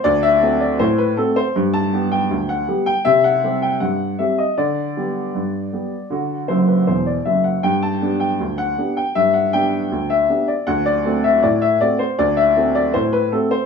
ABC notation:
X:1
M:2/4
L:1/16
Q:1/4=79
K:G
V:1 name="Upright piano"
d e2 d c B A c | z a2 g2 f2 g | e f2 g f2 e _e | d8- |
d2 c B c d e f | g a2 g2 f2 g | e f g3 e2 d | f d2 e d e d c |
d e2 d c B A c |]
V:2 name="Upright piano"
D,,2 [A,CF]2 A,,2 [A,CF]2 | G,,2 [G,B,G]2 D,,2 [G,B,G]2 | C,2 [G,CG]2 G,,2 [G,CG]2 | D,2 [G,B,G]2 G,,2 [G,B,G]2 |
[D,F]2 [F,,,F,,]2 [E,,,E,,]2 [F,,,F,,]2 | G,,2 [B,DG]2 D,,2 [B,DG]2 | G,,2 [B,DG]2 D,,2 [B,DG]2 | D,,2 [A,CF]2 A,,2 [A,CF]2 |
D,,2 [A,CF]2 A,,2 [A,CF]2 |]